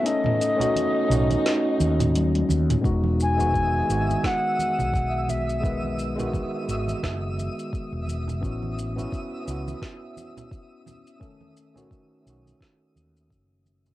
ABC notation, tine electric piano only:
X:1
M:4/4
L:1/16
Q:"Swing 16ths" 1/4=86
K:E
V:1 name="Tine electric piano"
[A,CDA]3 [A,CDF]3 [A,CDF]8- [A,CDF]2 | [G,B,DF]3 [D,G,B,F]3 [D,G,B,F]8- [D,G,B,F]2 | [D,G,B,B]3 [D,G,B,F]3 [D,G,B,F]8- [D,G,B,F]2 | [B,CEF]3 [B,CEF]3 [B,CEF]8- [B,CEF]2 |
[D,A,CA]3 [D,A,CF]3 [D,A,CF]8- [D,A,CF]2 |]